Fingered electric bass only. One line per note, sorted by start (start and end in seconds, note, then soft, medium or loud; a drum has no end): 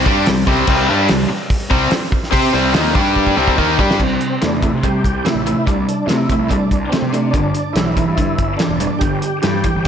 0.07 0.26 G2 medium
0.29 0.47 C2 medium
0.47 0.67 C2 loud
0.68 0.87 C2 loud
0.90 1.09 G2 loud
1.10 1.29 C2 medium
1.30 muted fingered electric bass stroke soft
1.71 1.90 C2 medium
1.92 muted fingered electric bass stroke soft
2.32 2.52 C3 loud
2.54 2.73 C2 medium
2.75 2.94 D#2 medium
2.95 3.34 G2 medium
3.37 3.56 C2 medium
3.59 3.78 D#2 medium
3.79 3.98 G2 medium
4.00 4.17 C2 medium
4.43 4.68 E2 medium
4.73 4.99 C3 medium
5.04 5.22 C2 medium
5.35 5.53 A1 medium
5.67 5.85 C2 medium
6.07 6.25 C3 medium
6.38 6.57 C2 medium
6.71 6.89 C2 medium
7.02 7.35 C3 medium
7.34 7.52 G1 medium
7.75 8.02 B1 medium
8.07 8.33 G2 medium
8.38 8.56 G1 medium
8.69 8.87 E1 medium
9.01 9.19 G1 medium
9.44 9.61 G2 medium
9.74 9.88 G1 medium